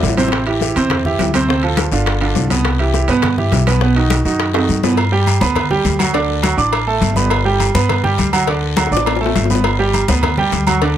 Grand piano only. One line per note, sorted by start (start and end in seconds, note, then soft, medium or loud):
0.00 0.13 D3 medium
0.00 0.13 D4 medium
0.00 0.13 E4 medium
0.18 0.42 C3 medium
0.18 0.42 C4 medium
0.18 0.42 C5 medium
0.47 0.59 E3 medium
0.47 0.59 E4 medium
0.47 0.59 G4 medium
0.61 0.73 E3 medium
0.61 0.74 E4 medium
0.61 0.74 G4 medium
0.76 1.00 C3 medium
0.76 1.00 C4 medium
0.76 1.00 C5 medium
1.06 1.29 E3 medium
1.06 1.29 E4 medium
1.06 1.30 G4 medium
1.35 1.47 C3 medium
1.35 1.47 C4 medium
1.35 1.47 C5 medium
1.49 1.61 C3 medium
1.49 1.61 C4 medium
1.49 1.61 C5 medium
1.63 1.87 F3 medium
1.63 1.88 F4 medium
1.63 1.88 A4 medium
1.92 2.16 D3 medium
1.92 2.16 D4 medium
1.92 2.17 F4 medium
2.21 2.45 D3 medium
2.21 2.46 D4 medium
2.21 2.46 F4 medium
2.50 2.75 B2 medium
2.50 2.74 B3 medium
2.50 2.75 B4 medium
2.79 2.92 E3 medium
2.79 2.92 E4 medium
2.79 2.92 G4 medium
2.94 3.06 E3 medium
2.94 3.06 E4 medium
2.94 3.07 G4 medium
3.09 3.33 B2 medium
3.09 3.33 B3 medium
3.09 3.33 B4 medium
3.38 3.62 E3 medium
3.38 3.62 E4 medium
3.38 3.62 G4 medium
3.67 3.79 B2 medium
3.67 3.79 B3 medium
3.67 3.79 B4 medium
3.81 3.93 B2 medium
3.81 3.94 B3 medium
3.81 3.94 B4 medium
3.96 4.20 D#3 medium
3.96 4.20 D#4 medium
3.96 4.20 F#4 medium
4.25 4.49 D#3 medium
4.25 4.49 D#4 medium
4.25 4.49 F#4 medium
4.54 4.78 D#3 medium
4.54 4.78 D#4 medium
4.54 4.78 F#4 medium
4.84 4.96 B2 medium
4.84 4.96 B3 medium
4.84 4.96 B4 medium
5.12 5.36 G3 medium
5.12 5.36 G4 medium
5.12 5.37 G5 medium
5.41 5.65 B3 medium
5.41 5.66 B4 medium
5.41 5.66 B5 medium
5.71 5.95 G3 medium
5.71 5.95 G4 medium
5.71 5.95 G5 medium
5.99 6.12 F#3 medium
5.99 6.12 F#4 medium
5.99 6.12 F#5 medium
6.14 6.38 D3 medium
6.14 6.38 D4 medium
6.14 6.38 D5 medium
6.43 6.55 F#3 medium
6.43 6.55 F#4 medium
6.43 6.55 F#5 medium
6.57 6.82 D4 medium
6.57 6.82 D5 medium
6.57 6.82 D6 medium
6.87 7.11 A3 medium
6.87 7.11 A4 medium
6.87 7.11 A5 medium
7.16 7.40 B3 medium
7.16 7.40 B4 medium
7.16 7.40 B5 medium
7.45 7.69 G3 medium
7.45 7.69 G4 medium
7.45 7.70 G5 medium
7.75 7.99 B3 medium
7.75 7.99 B4 medium
7.75 7.99 B5 medium
8.03 8.28 G3 medium
8.03 8.28 G4 medium
8.03 8.28 G5 medium
8.33 8.45 F#3 medium
8.33 8.45 F#4 medium
8.33 8.45 F#5 medium
8.48 8.72 D3 medium
8.48 8.72 D4 medium
8.48 8.72 D5 medium
8.77 8.89 F#3 medium
8.77 8.89 F#4 medium
8.77 8.89 F#5 medium
8.92 9.16 D4 medium
8.92 9.16 D5 medium
8.92 9.16 D6 medium
9.21 9.45 A3 medium
9.21 9.45 A4 medium
9.21 9.45 A5 medium
9.50 9.74 B3 medium
9.50 9.74 B4 medium
9.50 9.74 B5 medium
9.79 10.03 G3 medium
9.79 10.03 G4 medium
9.79 10.03 G5 medium
10.09 10.33 B3 medium
10.09 10.33 B4 medium
10.09 10.33 B5 medium
10.38 10.62 G3 medium
10.38 10.62 G4 medium
10.38 10.62 G5 medium
10.67 10.79 F#3 medium
10.67 10.79 F#4 medium
10.67 10.79 F#5 medium
10.82 10.98 D3 medium
10.82 10.98 D4 medium
10.82 10.98 D5 medium